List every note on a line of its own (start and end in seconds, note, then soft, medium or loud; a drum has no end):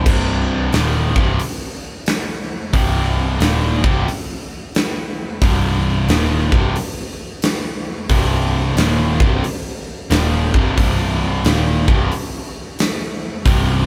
0.06 0.69 C1 medium
0.06 0.72 C2 medium
0.06 0.73 G2 medium
0.06 0.73 C3 loud
0.06 kick loud
0.06 crash loud
0.73 1.13 D#1 medium
0.73 1.15 D#2 medium
0.73 1.15 A#2 medium
0.73 1.16 D#3 loud
0.73 snare loud
0.73 open hi-hat medium
1.15 1.38 C1 medium
1.15 1.39 C2 medium
1.15 1.39 G2 medium
1.15 1.40 C3 medium
1.15 kick loud
1.39 open hi-hat medium
2.06 snare loud
2.06 open hi-hat medium
2.73 3.37 C1 medium
2.73 3.39 C2 medium
2.73 3.40 G2 medium
2.73 3.40 C3 loud
2.73 kick loud
2.73 open hi-hat medium
3.40 3.81 D#1 medium
3.40 3.82 D#2 medium
3.40 3.82 A#2 medium
3.40 3.83 D#3 medium
3.40 snare loud
3.40 open hi-hat medium
3.83 4.06 C1 medium
3.83 4.06 C2 medium
3.83 4.07 G2 medium
3.83 4.07 C3 medium
3.83 kick loud
4.08 open hi-hat soft
4.75 snare loud
4.75 open hi-hat soft
5.42 6.05 C1 medium
5.42 6.08 C2 medium
5.42 6.08 G2 loud
5.42 6.09 C3 medium
5.42 kick loud
5.42 open hi-hat soft
6.08 6.49 D#1 medium
6.08 6.51 D#2 medium
6.08 6.51 A#2 loud
6.08 6.51 D#3 loud
6.08 snare loud
6.08 open hi-hat soft
6.52 6.74 C1 medium
6.52 6.75 C2 medium
6.52 6.75 G2 medium
6.52 6.75 C3 medium
6.52 kick loud
6.76 open hi-hat medium
7.42 snare loud
7.42 open hi-hat medium
8.09 8.73 C1 medium
8.09 8.76 C2 medium
8.09 8.77 G2 loud
8.09 8.77 C3 loud
8.09 kick loud
8.09 open hi-hat medium
8.76 9.17 D#1 medium
8.76 9.19 D#2 medium
8.76 9.19 A#2 medium
8.76 9.19 D#3 loud
8.76 snare loud
8.76 open hi-hat medium
9.20 9.42 C1 medium
9.20 9.43 C2 medium
9.20 9.43 G2 medium
9.20 9.44 C3 loud
9.20 kick loud
9.44 open hi-hat soft
10.10 10.51 D#1 medium
10.10 10.53 D#2 medium
10.10 10.53 A#2 medium
10.10 10.53 D#3 medium
10.10 snare loud
10.10 open hi-hat medium
10.54 10.76 C1 medium
10.54 10.77 C2 medium
10.54 10.77 G2 medium
10.54 10.78 C3 medium
10.54 kick loud
10.78 11.41 C1 medium
10.78 11.44 C2 medium
10.78 11.44 G2 loud
10.78 11.45 C3 loud
10.78 kick loud
10.78 open hi-hat medium
11.44 11.85 D#1 medium
11.44 11.87 D#2 medium
11.44 11.87 A#2 medium
11.44 11.87 D#3 loud
11.44 snare loud
11.44 open hi-hat medium
11.88 12.10 C1 medium
11.88 12.11 C2 medium
11.88 12.11 G2 medium
11.88 12.11 C3 medium
11.88 kick loud
12.12 open hi-hat medium
12.79 snare loud
12.79 open hi-hat medium
13.45 13.86 C1 medium
13.45 13.86 C2 medium
13.45 13.86 G2 loud
13.45 13.86 C3 loud
13.45 kick loud
13.45 open hi-hat medium